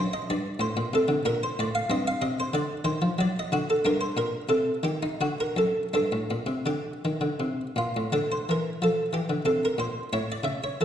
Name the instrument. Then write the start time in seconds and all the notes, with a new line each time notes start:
harpsichord
Already playing: F#2 D4 C5
0.13 D#5
0.30 G2 D5
0.59 A2 C5
0.77 A#2
0.93 C3 A4
1.08 D3
1.25 A#2 A#4
1.43 C5
1.59 A2 D5
1.75 F5
1.90 G2 C4 D#5
2.07 F5
2.22 C3 D#5
2.40 C5
2.54 D3 D5
2.85 D#3 C5
3.02 F3
3.18 F#3 D5
3.39 D#5
3.52 D3 F#4
3.70 A4
3.85 G2 D4 A#4
4.01 C5
4.17 A#2 A#4
4.49 C3 A4
4.83 D#3 G4
5.03 D#4
5.21 D3 F#4
5.40 A#4
5.56 F#2 A4
5.94 G2 D4 A4
6.12 A2
6.31 A#2
6.46 C3
6.66 D3 G4
7.05 D#3
7.21 D3
7.40 C3
7.76 A#2 F4
7.97 A2
8.12 D3 D4 A4
8.32 C5
8.49 E3 A#4
8.82 F3 A4
9.13 E3 G4
9.30 D3
9.45 C3 A4
9.65 A#4
9.78 A#2 C5
10.13 A2 E4 C#5
10.32 D5
10.43 C#3 E5
10.64 C#5
10.81 E3 A4